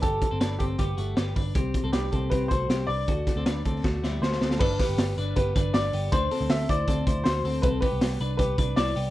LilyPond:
<<
  \new Staff \with { instrumentName = "Upright piano" } { \time 4/4 \key g \major \tempo 4 = 158 a'4. g'8 g'4. r8 | r4 g'4 b'8 c''4 d''8~ | d''2. c''4 | b'8 b'4. b'4 d''4 |
c''4 e''8 d''4. c''4 | b'8 b'4. b'4 d''4 | }
  \new Staff \with { instrumentName = "Clean electric guitar" } { \time 4/4 \key g \major <b g'>8. <c' a'>16 <d' b'>8 <c' a'>8 <b g'>8 <a fis'>8 <b g'>8 <d' b'>8 | <c' g'>8. <c' a'>16 <d' b'>8 <c' a'>8 <c' g'>8 <a fis'>8 <c' g'>8 <d' b'>8 | <a fis'>8. <c' a'>16 <d' b'>8 <c' a'>8 <a fis'>8 <g e'>8 <a fis'>8 <c' a'>8 | <d' a'>8 <b g'>4 <d' b'>8 <b g'>8 <d' b'>8 <d' b'>8 <b g'>8 |
<d' b'>8 <c' a'>4 <e' c''>8 <c' a'>8 <e' c''>8 <fis' c''>8 <c' a'>8 | <c' a'>8 <b g'>4 <d' b'>8 <b g'>8 <d' b'>8 <e' b'>8 <b g'>8 | }
  \new Staff \with { instrumentName = "Picked electric bass" } { \clef bass \time 4/4 \key g \major g,,8 r16 g,,16 g,,8 g,,8 g,,8 g,,8 g,,8 g,,8 | c,8 r16 c,16 c,8 c,8 c,8 c,8 c,8 c,8 | d,8 r16 d,16 d,8 d,8 d,8 d,8 d,8 d,8 | g,,8 r16 g,,16 g,,8 g,,8 g,,8 g,,8 g,,8 g,,8 |
d,8 r16 d,16 d,8 d,8 d,8 d,8 d,8 d,8 | c,8 r16 c,16 c,8 c,8 c,8 c,8 c,8 c,8 | }
  \new DrumStaff \with { instrumentName = "Drums" } \drummode { \time 4/4 <hh bd>8 <hh bd>8 <hh sn>8 <hh bd>8 <hh bd>8 hh8 <hh sn>8 <hho bd>8 | <hh bd>8 <hh bd>8 <hh sn>8 <hh bd>8 <hh bd>8 <hh bd>8 <hh sn>8 hho8 | <hh bd>8 <hh bd sn>8 <hh sn>8 <hh bd>8 <bd sn>8 sn8 sn16 sn16 sn16 sn16 | <cymc bd>8 <hho hhp bd sn>8 <hho hhp sn>8 <hho hhp>8 <hho hhp bd>8 <hho hhp bd>8 <hho hhp sn>8 <hho hhp>8 |
<hho hhp bd>8 <hho hhp sn>8 <hho hhp sn>8 <hho hhp bd>8 <hho hhp bd>8 <hho hhp bd>8 <hho hhp sn>8 <hho hhp>8 | <hho hhp bd>8 <hho hhp bd>8 <hho hhp sn>8 <hho hhp>8 <hho hhp bd>8 <hho hhp bd>8 <hho hhp sn>8 <hho hhp>8 | }
>>